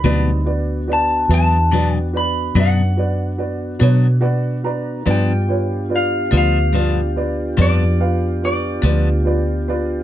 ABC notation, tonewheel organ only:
X:1
M:12/8
L:1/8
Q:3/8=48
K:Glyd
V:1 name="Tonewheel organ"
[G,=C^D] [B,=DF]8- [B,DF]3 | [B,D=FG]12 |]